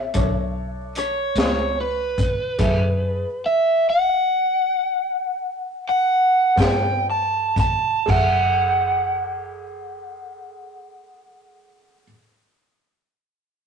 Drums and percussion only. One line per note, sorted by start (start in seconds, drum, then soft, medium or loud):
0.14 kick medium
0.14 closed hi-hat medium
0.95 closed hi-hat medium
1.36 snare medium
1.36 closed hi-hat medium
2.18 kick medium
2.18 closed hi-hat soft
2.59 kick medium
2.59 closed hi-hat medium
2.59 crash medium
6.57 kick medium
6.57 snare medium
6.57 closed hi-hat medium
7.56 kick medium
7.56 closed hi-hat soft
8.08 kick medium
8.08 crash medium